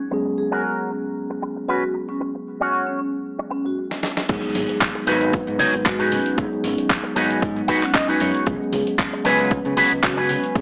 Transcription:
0.11 tine electric piano F#3 G#3 B3 C#4 G#4, muted clean electric guitar stroke
0.26 muted clean electric guitar stroke
0.38 vibraphone G#4
0.51 clean electric guitar C#4 F#4 A#4
1.30 muted clean electric guitar stroke
1.42 muted clean electric guitar stroke
1.56 muted clean electric guitar stroke
1.68 clean electric guitar C#4 F#4 B4, vibraphone F#4
1.94 muted clean electric guitar stroke
2.09 vibraphone C#4
2.20 muted clean electric guitar stroke
2.35 muted clean electric guitar stroke
2.61 clean electric guitar C#4 F#4 C#5
2.87 vibraphone C#4
2.99 vibraphone C#4
3.39 muted clean electric guitar stroke
3.50 vibraphone C#4, muted clean electric guitar stroke
3.64 vibraphone F#4, muted clean electric guitar stroke
3.91 snare
4.03 snare
4.17 snare
4.29 fingered electric bass G#1, tine electric piano F#3 G#3 B3 D#4 G#4, kick, closed hi-hat, crash, impact, shaker
4.44 shaker
4.55 fingered electric bass G#1, vibraphone G#4, open hi-hat, high conga
4.69 muted clean electric guitar stroke, closed hi-hat, shaker
4.81 kick, clap, closed hi-hat, shaker
4.95 muted clean electric guitar stroke, closed hi-hat, shaker
5.07 fingered electric bass G#1, tine electric piano F#3 G#3 B3 D#4 B4, clean electric guitar D#4 F#4 G#4 B4, open hi-hat
5.21 closed hi-hat, shaker
5.33 kick, closed hi-hat, shaker
5.47 fingered electric bass G#2, closed hi-hat, shaker
5.58 clean electric guitar D#4 F#4 G#4 C#5, open hi-hat, low conga
5.74 fingered electric bass G#1, closed hi-hat, shaker
5.85 fingered electric bass G#2, vibraphone F#4, kick, clap, closed hi-hat, shaker
5.99 clean electric guitar D#4 F#4 G#4 B4, closed hi-hat, high conga, shaker
6.12 vibraphone C#4, open hi-hat, low conga
6.26 closed hi-hat, shaker
6.37 fingered electric bass G#1, tine electric piano F#3 G#3 B3 D#4 G#4, kick, closed hi-hat, shaker
6.52 shaker
6.64 fingered electric bass G#1, vibraphone C#4, open hi-hat, high conga
6.78 muted clean electric guitar stroke, closed hi-hat, shaker
6.90 kick, clap, closed hi-hat, shaker
7.03 muted clean electric guitar stroke, closed hi-hat, shaker
7.15 fingered electric bass G#1, tine electric piano F#3 G#3 B3 D#4, clean electric guitar D#4 F#4 G#4 B4, open hi-hat
7.30 closed hi-hat, shaker
7.42 fingered electric bass G#2, kick, closed hi-hat, shaker
7.56 closed hi-hat, shaker
7.68 clean electric guitar D#4 F#4 G#4 B4 F#5, kick, open hi-hat
7.82 vibraphone C#4, clap, closed hi-hat, shaker
7.94 clean electric guitar D#5, muted clean electric guitar stroke, kick, clap, open hi-hat, shaker
8.08 clean electric guitar D#4 F#4 G#4 B4, closed hi-hat, high conga, shaker
8.20 fingered electric bass F#2, clean electric guitar C#5, open hi-hat
8.35 closed hi-hat, shaker
8.46 fingered electric bass C#2, tine electric piano F#3 G#3 B3 C#4 G#4, kick, closed hi-hat, shaker
8.62 shaker
8.73 fingered electric bass C#2, vibraphone G#4, open hi-hat, high conga
8.87 muted clean electric guitar stroke, closed hi-hat, shaker
8.99 kick, clap, closed hi-hat, shaker
9.13 muted clean electric guitar stroke, closed hi-hat, shaker
9.24 fingered electric bass C#2, tine electric piano F#3 G#3 B3 C#4 B4, clean electric guitar C#4 F#4 G#4 B4, open hi-hat
9.39 closed hi-hat, shaker
9.51 kick, closed hi-hat, shaker
9.65 fingered electric bass C#3, closed hi-hat, shaker
9.77 clean electric guitar C#4 F#4 G#4 B4, open hi-hat, low conga
9.91 fingered electric bass C#2, closed hi-hat, shaker
10.03 fingered electric bass C#3, vibraphone F#4, muted clean electric guitar stroke, kick, clap, closed hi-hat, shaker
10.17 clean electric guitar C#4 F#4 G#4 B4, closed hi-hat, high conga, shaker
10.29 open hi-hat, low conga
10.43 vibraphone C#4, closed hi-hat, shaker
10.55 fingered electric bass C#2, tine electric piano F#3 G#3 B3 C#4 G#4, kick, closed hi-hat, shaker

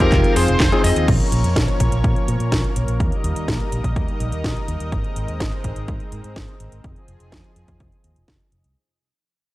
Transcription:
Already playing: analog synth pad D#3 F3 G#3 C4 F4
0.00 fingered electric bass F2, electric grand piano C4 D#4 F4 G4, lead electric guitar A#4, kick, closed hi-hat
0.12 fingered electric bass F1, kick, clap, closed hi-hat
0.24 closed hi-hat
0.36 fingered electric bass F2, electric grand piano C4 D#4 F4 G#4, lead electric guitar C5, open hi-hat
0.48 fingered electric bass F1, closed hi-hat
0.60 fingered electric bass F1, kick, snare, clap, closed hi-hat
0.72 electric grand piano C4 D#4 F4 G#4, closed hi-hat
0.84 fingered electric bass F2, lead electric guitar D#5, open hi-hat
0.96 fingered electric bass D#2, closed hi-hat
1.08 fingered electric bass A#1, analog synth pad F3 A#3 C#4 A#4 C#5, kick, closed hi-hat, crash
1.20 closed hi-hat
1.32 fingered electric bass A#1, closed hi-hat
1.44 fingered electric bass F2, closed hi-hat
1.56 fingered electric bass A#1, kick, snare, closed hi-hat
1.68 closed hi-hat
1.80 fingered electric bass A#1, kick, closed hi-hat
1.92 fingered electric bass A#1, closed hi-hat
2.04 fingered electric bass A#2, kick, closed hi-hat
2.16 closed hi-hat
2.28 fingered electric bass A#2, closed hi-hat
2.40 fingered electric bass A#2, closed hi-hat
2.52 fingered electric bass A#1, kick, snare, closed hi-hat
2.64 closed hi-hat
2.76 fingered electric bass A#1, closed hi-hat
2.88 fingered electric bass A#1, closed hi-hat
3.00 fingered electric bass D#2, analog synth pad G3 D#4 D#5, kick, closed hi-hat
3.12 closed hi-hat
3.24 fingered electric bass D#2, closed hi-hat
3.36 fingered electric bass D#2, closed hi-hat
3.48 fingered electric bass A#1, kick, snare, closed hi-hat
3.60 closed hi-hat
3.72 fingered electric bass A#1, closed hi-hat
3.84 fingered electric bass A#1, kick, closed hi-hat
3.96 fingered electric bass D#2, kick, closed hi-hat
4.08 closed hi-hat
4.20 fingered electric bass A#1, closed hi-hat
4.32 fingered electric bass D#2, closed hi-hat
4.44 fingered electric bass A#1, kick, snare, closed hi-hat
4.56 closed hi-hat
4.68 fingered electric bass D#2, closed hi-hat
4.80 fingered electric bass D#2, closed hi-hat
4.92 fingered electric bass G#1, analog synth pad G#3 C4, kick, closed hi-hat
5.04 closed hi-hat
5.16 fingered electric bass G#1, closed hi-hat
5.28 fingered electric bass D#2, closed hi-hat
5.40 fingered electric bass G#1, kick, snare, closed hi-hat
5.52 closed hi-hat
5.64 fingered electric bass G#1, kick, closed hi-hat
5.76 fingered electric bass G#1, closed hi-hat
5.88 fingered electric bass G#2, kick, closed hi-hat
6.00 closed hi-hat
6.12 fingered electric bass G#2, closed hi-hat
6.24 fingered electric bass G#2, closed hi-hat
6.36 fingered electric bass G#1, kick, snare, closed hi-hat
6.48 closed hi-hat
6.60 fingered electric bass G#1, closed hi-hat
6.72 fingered electric bass G#1, closed hi-hat
6.84 fingered electric bass F1, analog synth pad F3 G#4, kick, closed hi-hat
6.96 closed hi-hat
7.08 fingered electric bass F1, closed hi-hat
7.20 fingered electric bass F1, closed hi-hat
7.32 fingered electric bass F2, kick, snare, closed hi-hat
7.44 closed hi-hat
7.56 fingered electric bass F2, closed hi-hat
7.68 fingered electric bass F2, kick, closed hi-hat
7.80 fingered electric bass F1, kick, closed hi-hat
7.92 closed hi-hat
8.04 fingered electric bass D#2, closed hi-hat
8.16 fingered electric bass F1, closed hi-hat
8.28 fingered electric bass F1, kick, snare, closed hi-hat
8.40 closed hi-hat
8.52 fingered electric bass F1, closed hi-hat
8.64 fingered electric bass C2, closed hi-hat

